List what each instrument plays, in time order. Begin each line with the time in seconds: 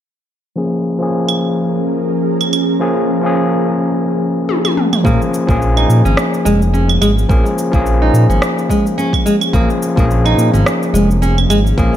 0.56 tine electric piano F3 A#3 C#4 G#4, ambient pad F3 C#4 G#4 A#4
0.99 tine electric piano F3 A#3 C#4 G#4
1.29 claves
2.41 claves
2.53 claves
2.80 tine electric piano F3 A#3 C#4 G#4
3.22 tine electric piano F3 A#3 C#4
3.26 tine electric piano G#4
4.49 high tom
4.65 high tom, claves
4.77 mid tom
4.93 mid tom, claves
5.04 analog synth bass A#1, tine electric piano F3 A#3 C#4 G#4, nylon-string guitar A#3, kick, cabasa
5.22 cabasa
5.34 cabasa
5.47 analog synth bass A#1, tine electric piano F3 A#3 C#4 G#4, nylon-string guitar A#3, kick, cabasa
5.62 cabasa
5.77 nylon-string guitar D#4, claves
5.89 analog synth bass A#2, cabasa
6.05 analog synth bass G#1, nylon-string guitar C#4, cabasa
6.17 cross-stick, cabasa
6.34 cabasa
6.45 analog synth bass F1, nylon-string guitar G#3, cabasa
6.62 cabasa
6.73 nylon-string guitar C#4, cabasa
6.89 claves
7.01 analog synth bass G#1, nylon-string guitar G#3, cabasa, claves
7.18 cabasa
7.29 analog synth bass A#1, tine electric piano F3 A#3 C#4 G#4, nylon-string guitar A#3, kick, cabasa
7.46 cabasa
7.58 cabasa
7.72 analog synth bass A#1, tine electric piano F3 A#3 C#4, nylon-string guitar A#3, kick, cabasa
7.76 tine electric piano G#4
7.86 cabasa
8.02 nylon-string guitar D#4
8.13 analog synth bass A#2, cabasa
8.29 analog synth bass G#1, nylon-string guitar C#4, cabasa
8.42 cross-stick, cabasa
8.58 cabasa
8.69 nylon-string guitar G#3, kick, cabasa
8.87 cabasa
8.98 nylon-string guitar C#4, cabasa
9.13 kick, claves
9.26 nylon-string guitar G#3, cabasa
9.41 cabasa, claves
9.53 analog synth bass A#1, tine electric piano F3 A#3 C#4 G#4, nylon-string guitar A#3, kick, cabasa
9.70 cabasa
9.82 cabasa
9.96 analog synth bass A#1, tine electric piano F3 A#3 C#4, nylon-string guitar A#3, kick, cabasa
10.00 tine electric piano G#4
10.11 cabasa
10.25 nylon-string guitar D#4, claves
10.37 analog synth bass A#2, cabasa
10.53 analog synth bass G#1, nylon-string guitar C#4, cabasa
10.66 cross-stick, cabasa
10.83 cabasa
10.93 analog synth bass F1, nylon-string guitar G#3, cabasa
11.11 cabasa
11.22 nylon-string guitar C#4, cabasa
11.38 claves
11.49 analog synth bass G#1, nylon-string guitar G#3, cabasa, claves
11.67 cabasa
11.77 analog synth bass A#1, tine electric piano F3 A#3 C#4 G#4, nylon-string guitar A#3, kick, cabasa